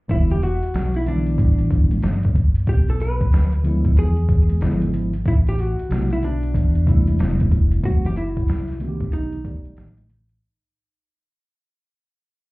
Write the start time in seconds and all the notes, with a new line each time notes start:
0.08 E1 D3 E3 G3 B3 E4, kick, closed hi-hat, shaker
0.30 G4, closed hi-hat
0.43 F#4, closed hi-hat
0.63 muted fingered electric bass stroke, closed hi-hat
0.74 B1, snare, closed hi-hat
0.94 E4, closed hi-hat
1.06 D3 E3 G3 B3 D4 E4, closed hi-hat, high conga, low conga, shaker
1.27 closed hi-hat, shaker
1.38 A1, kick, closed hi-hat
1.58 closed hi-hat
1.71 kick, closed hi-hat
1.91 closed hi-hat, high conga, shaker
2.02 G1, snare, closed hi-hat, low conga, shaker
2.23 kick, closed hi-hat, shaker
2.35 kick, closed hi-hat, low conga, shaker
2.55 closed hi-hat, shaker
2.67 B1 G4, kick, closed hi-hat
2.89 A4, closed hi-hat
3.00 B4, closed hi-hat
3.21 muted fingered electric bass stroke, kick, closed hi-hat
3.32 D2, snare, closed hi-hat
3.52 closed hi-hat
3.63 D3 F3 G#3 B3 E4, closed hi-hat, high conga, low conga, shaker
3.85 kick, closed hi-hat, shaker
3.97 E2 G#4, closed hi-hat
4.17 closed hi-hat, shaker
4.29 kick, closed hi-hat, shaker
4.49 closed hi-hat, high conga, shaker
4.60 G#1 D3 F3 G#3 B3 E4, snare, closed hi-hat, low conga, shaker
4.82 closed hi-hat
4.93 closed hi-hat, low conga, shaker
5.13 closed hi-hat, shaker
5.25 A1 E4, kick, closed hi-hat
5.47 G4, closed hi-hat
5.59 F#4, closed hi-hat
5.79 closed hi-hat
5.89 B1 C3 G3 A3 B3 E4, snare, closed hi-hat
6.10 E4, closed hi-hat
6.23 D4, closed hi-hat, high conga, low conga, shaker
6.43 closed hi-hat, shaker
6.54 E2, kick, closed hi-hat
6.75 closed hi-hat, shaker
6.86 C3 G3 A3 B3 E4, kick, closed hi-hat
7.07 closed hi-hat, high conga, shaker
7.19 E1, snare, closed hi-hat, low conga, shaker
7.40 kick, closed hi-hat
7.51 kick, closed hi-hat, low conga, shaker
7.71 closed hi-hat
7.83 F#1 E3 F#3 A3 C4 F#4, kick, closed hi-hat
8.05 G4, closed hi-hat
8.16 E4, closed hi-hat
8.37 muted fingered electric bass stroke, kick, closed hi-hat
8.48 C2, snare, closed hi-hat
8.68 snare, closed hi-hat
8.79 D#3 A3 B3 D4 F#4, closed hi-hat, high conga, low conga, shaker
8.88 G4
9.00 kick, closed hi-hat, shaker
9.13 B1 D#4, closed hi-hat, high conga, shaker
9.32 closed hi-hat, shaker
9.44 D#3 A3 B3 G4 D5, kick, closed hi-hat
9.65 closed hi-hat, high conga, shaker
9.77 A1, snare, closed hi-hat, low conga, shaker
9.98 closed hi-hat, high conga, shaker
10.09 closed hi-hat, low conga, shaker